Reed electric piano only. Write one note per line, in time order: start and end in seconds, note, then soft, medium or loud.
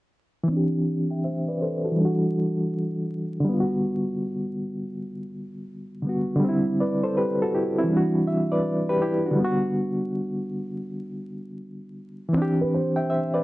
0.44 1.91 E3 medium
0.48 1.94 C4 medium
0.52 1.96 D4 medium
0.57 0.89 G4 medium
1.11 1.23 E5 soft
1.11 1.23 G5 medium
1.24 1.47 C5 soft
1.24 1.47 E5 medium
1.48 1.61 B4 medium
1.48 1.60 D5 medium
1.62 1.83 A4 soft
1.62 1.84 C5 medium
1.84 2.04 F#4 soft
1.84 2.20 A4 medium
1.92 3.40 E3 medium
1.96 3.42 G3 medium
2.01 3.44 D4 medium
2.05 3.46 F#4 medium
3.40 5.98 D3 medium
3.44 6.00 G3 medium
3.49 6.03 B3 medium
3.53 3.58 F4 medium
3.60 6.08 F#4 medium
6.02 6.34 D3 medium
6.02 6.39 G3 soft
6.07 6.43 B3 soft
6.07 6.44 F#4 medium
6.35 7.84 D3 medium
6.40 7.86 G3 medium
6.44 6.79 C4 medium
6.49 6.82 E4 medium
6.80 7.03 B4 soft
6.80 7.02 D5 medium
7.03 7.16 A4 medium
7.03 7.16 C5 medium
7.17 7.40 G4 medium
7.17 7.39 B4 medium
7.42 7.54 F#4 medium
7.42 7.54 A4 medium
7.55 7.77 E4 soft
7.55 7.77 G4 medium
7.78 8.13 C4 soft
7.78 8.13 E4 medium
7.84 9.32 E3 medium
7.88 9.34 G3 medium
7.93 8.28 D4 medium
7.97 8.30 F#4 medium
8.27 8.50 E5 soft
8.52 8.87 B4 soft
8.52 8.87 D5 medium
8.89 9.01 G4 medium
8.89 9.01 B4 medium
9.02 9.25 E4 medium
9.02 9.24 G4 medium
9.26 9.61 D4 medium
9.26 9.43 F#4 medium
9.31 12.27 D3 medium
9.36 12.29 G3 medium
9.40 12.31 B3 medium
9.45 12.34 F#4 medium
12.29 13.44 E3 medium
12.33 13.44 C4 medium
12.37 13.44 D4 medium
12.42 12.75 G4 medium
12.96 13.08 E5 soft
12.96 13.08 G5 medium
13.10 13.32 C5 soft
13.10 13.32 E5 medium
13.34 13.44 B4 soft
13.34 13.44 D5 medium